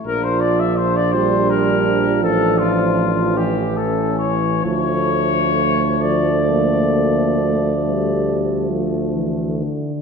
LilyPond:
<<
  \new Staff \with { instrumentName = "Cornet" } { \time 12/8 \key d \minor \tempo 4. = 47 bes'16 c''16 d''16 e''16 c''16 d''16 c''8 bes'4 a'8 f'4 g'8 a'8 cis''8 | cis''4. d''2. r4. | }
  \new Staff \with { instrumentName = "Flugelhorn" } { \time 12/8 \key d \minor d'1~ d'8 cis'4. | a1~ a4. r8 | }
  \new Staff \with { instrumentName = "Euphonium" } { \clef bass \time 12/8 \key d \minor f1~ f8 e4. | f4. f8 bes4 a8 g4 f8 e8 d8 | }
  \new Staff \with { instrumentName = "Trombone" } { \clef bass \time 12/8 \key d \minor f4. g4. f4. e4. | f1~ f4~ f16 r8. | }
  \new Staff \with { instrumentName = "Tuba" } { \clef bass \time 12/8 \key d \minor bes,,2. a,,2. | d,1~ d,4. r8 | }
>>